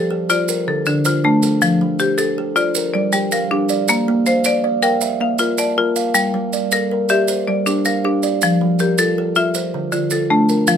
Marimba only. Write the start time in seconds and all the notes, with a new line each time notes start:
Already playing: G4 A4
0.30 F4 D5
0.68 A4
0.87 D3
1.06 F4
1.25 A3
1.62 F3
2.00 G4
2.18 A4
2.56 F4 D5
2.94 D5
3.13 G3
3.32 A#4
3.51 D4
3.89 A#3
4.26 C5
4.46 D5
4.82 A#4 G5
5.21 F5
5.39 F4
5.58 D5
5.78 F4
6.14 G3
6.73 A#4
7.10 G4 E5
7.47 D5
7.66 D4
7.86 A#4
8.05 D4
8.43 F3
8.80 G4
8.99 A4
9.36 F4 E5
9.92 D3
10.12 A4
10.30 A3
10.68 F3